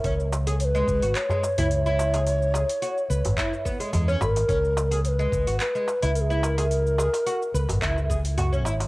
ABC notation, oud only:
X:1
M:4/4
L:1/16
Q:"Swing 16ths" 1/4=108
K:C#dor
V:1 name="Oud"
C z2 G z G,2 F z G, z E z E2 G | z2 G z F z B2 E z B, G, G, C B z | C z2 G z G,2 F z G, z E z E2 G | z2 G z F z B2 E z G z F C E z |]